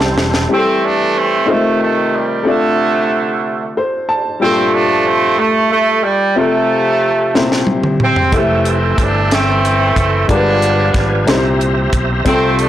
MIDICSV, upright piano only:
0, 0, Header, 1, 2, 480
1, 0, Start_track
1, 0, Key_signature, -1, "major"
1, 0, Tempo, 653595
1, 364, Time_signature, 6, 3, 24, 8
1, 9318, End_track
2, 0, Start_track
2, 0, Title_t, "Upright piano"
2, 0, Program_c, 0, 0
2, 0, Control_c, 0, 64, 127
2, 0, Note_on_c, 0, 52, 47
2, 0, Note_on_c, 0, 55, 42
2, 0, Note_on_c, 0, 60, 58
2, 0, Note_on_c, 0, 79, 99
2, 0, Note_on_c, 0, 81, 77
2, 335, Note_off_c, 0, 81, 0
2, 359, Note_off_c, 0, 55, 0
2, 359, Note_on_c, 0, 55, 61
2, 361, Note_off_c, 0, 60, 0
2, 361, Note_on_c, 0, 60, 48
2, 365, Note_on_c, 0, 64, 52
2, 369, Note_on_c, 0, 67, 51
2, 372, Note_off_c, 0, 52, 0
2, 372, Note_off_c, 0, 79, 0
2, 372, Control_c, 0, 64, 0
2, 417, Note_off_c, 0, 67, 0
2, 420, Note_on_c, 0, 69, 59
2, 508, Control_c, 0, 64, 127
2, 1062, Note_off_c, 0, 60, 0
2, 1069, Note_on_c, 0, 56, 49
2, 1073, Note_on_c, 0, 60, 53
2, 1079, Note_on_c, 0, 63, 60
2, 1080, Note_off_c, 0, 55, 0
2, 1083, Note_off_c, 0, 64, 0
2, 1084, Note_on_c, 0, 65, 58
2, 1090, Note_on_c, 0, 72, 60
2, 1091, Control_c, 0, 64, 0
2, 1111, Note_off_c, 0, 69, 0
2, 1123, Note_off_c, 0, 56, 0
2, 1123, Note_on_c, 0, 57, 55
2, 1214, Control_c, 0, 64, 127
2, 1786, Note_on_c, 0, 69, 60
2, 1787, Note_off_c, 0, 60, 0
2, 1798, Note_on_c, 0, 60, 53
2, 1800, Note_off_c, 0, 63, 0
2, 1800, Note_off_c, 0, 65, 0
2, 1805, Note_off_c, 0, 72, 0
2, 1805, Note_on_c, 0, 62, 53
2, 1811, Control_c, 0, 64, 0
2, 1811, Note_on_c, 0, 65, 58
2, 1818, Note_on_c, 0, 74, 67
2, 1822, Note_off_c, 0, 57, 0
2, 1933, Control_c, 0, 64, 127
2, 2770, Note_on_c, 0, 72, 63
2, 2989, Note_off_c, 0, 72, 0
2, 3002, Note_on_c, 0, 81, 66
2, 3203, Note_off_c, 0, 69, 0
2, 3209, Note_off_c, 0, 60, 0
2, 3213, Note_off_c, 0, 62, 0
2, 3216, Note_off_c, 0, 65, 0
2, 3219, Note_off_c, 0, 74, 0
2, 3224, Note_off_c, 0, 81, 0
2, 3229, Note_on_c, 0, 55, 59
2, 3239, Note_on_c, 0, 46, 58
2, 3246, Note_on_c, 0, 43, 57
2, 3248, Note_on_c, 0, 62, 52
2, 3249, Control_c, 0, 64, 0
2, 3252, Note_on_c, 0, 65, 59
2, 3263, Note_on_c, 0, 69, 64
2, 3371, Control_c, 0, 64, 127
2, 3933, Note_off_c, 0, 43, 0
2, 4644, Note_off_c, 0, 55, 0
2, 4649, Note_off_c, 0, 46, 0
2, 4654, Note_off_c, 0, 62, 0
2, 4656, Note_off_c, 0, 65, 0
2, 4661, Note_off_c, 0, 69, 0
2, 4671, Note_on_c, 0, 60, 61
2, 4678, Note_on_c, 0, 48, 58
2, 4681, Note_on_c, 0, 65, 56
2, 4687, Control_c, 0, 64, 0
2, 4690, Note_on_c, 0, 69, 64
2, 4833, Control_c, 0, 64, 127
2, 5369, Note_off_c, 0, 48, 0
2, 5388, Note_off_c, 0, 60, 0
2, 5393, Note_on_c, 0, 46, 72
2, 5399, Note_off_c, 0, 65, 0
2, 5399, Note_on_c, 0, 60, 65
2, 5403, Note_on_c, 0, 48, 69
2, 5403, Note_on_c, 0, 64, 73
2, 5404, Note_off_c, 0, 69, 0
2, 5406, Control_c, 0, 64, 0
2, 5406, Note_on_c, 0, 67, 60
2, 5408, Note_on_c, 0, 72, 83
2, 5557, Control_c, 0, 64, 127
2, 6091, Note_off_c, 0, 48, 0
2, 6100, Note_off_c, 0, 64, 0
2, 6108, Note_on_c, 0, 56, 48
2, 6111, Note_on_c, 0, 64, 51
2, 6115, Note_off_c, 0, 46, 0
2, 6115, Note_off_c, 0, 67, 0
2, 6118, Note_off_c, 0, 60, 0
2, 6120, Note_on_c, 0, 69, 57
2, 6123, Note_off_c, 0, 72, 0
2, 6126, Control_c, 0, 64, 0
2, 6126, Note_on_c, 0, 67, 54
2, 6139, Note_on_c, 0, 72, 61
2, 6153, Note_on_c, 0, 57, 60
2, 6161, Note_off_c, 0, 56, 0
2, 6261, Control_c, 0, 64, 127
2, 7525, Note_off_c, 0, 64, 0
2, 7530, Note_off_c, 0, 69, 0
2, 7533, Note_off_c, 0, 67, 0
2, 7540, Note_off_c, 0, 72, 0
2, 7547, Note_off_c, 0, 57, 0
2, 7547, Note_on_c, 0, 56, 61
2, 7552, Note_on_c, 0, 62, 57
2, 7558, Note_on_c, 0, 65, 55
2, 7560, Note_on_c, 0, 43, 66
2, 7564, Note_on_c, 0, 67, 52
2, 7564, Note_on_c, 0, 70, 59
2, 7569, Control_c, 0, 64, 0
2, 7608, Note_off_c, 0, 70, 0
2, 7615, Note_on_c, 0, 71, 61
2, 7687, Control_c, 0, 64, 127
2, 8250, Note_off_c, 0, 43, 0
2, 8273, Note_off_c, 0, 56, 0
2, 8273, Note_off_c, 0, 67, 0
2, 8273, Note_on_c, 0, 58, 70
2, 8275, Note_off_c, 0, 62, 0
2, 8277, Note_on_c, 0, 60, 73
2, 8278, Note_off_c, 0, 65, 0
2, 8279, Note_on_c, 0, 63, 56
2, 8282, Note_on_c, 0, 46, 70
2, 8284, Note_on_c, 0, 67, 71
2, 8287, Control_c, 0, 64, 0
2, 8289, Note_on_c, 0, 72, 88
2, 8307, Note_off_c, 0, 71, 0
2, 8326, Note_off_c, 0, 63, 0
2, 8330, Note_on_c, 0, 64, 64
2, 8399, Control_c, 0, 64, 127
2, 8971, Note_off_c, 0, 46, 0
2, 8984, Note_off_c, 0, 60, 0
2, 8995, Note_on_c, 0, 60, 67
2, 8996, Note_off_c, 0, 58, 0
2, 9002, Note_off_c, 0, 67, 0
2, 9003, Note_on_c, 0, 65, 59
2, 9004, Note_off_c, 0, 72, 0
2, 9004, Note_on_c, 0, 48, 63
2, 9007, Control_c, 0, 64, 0
2, 9013, Note_on_c, 0, 69, 67
2, 9025, Note_off_c, 0, 64, 0
2, 9122, Control_c, 0, 64, 127
2, 9318, Note_off_c, 0, 48, 0
2, 9318, Note_off_c, 0, 60, 0
2, 9318, Note_off_c, 0, 65, 0
2, 9318, Note_off_c, 0, 69, 0
2, 9318, End_track
0, 0, End_of_file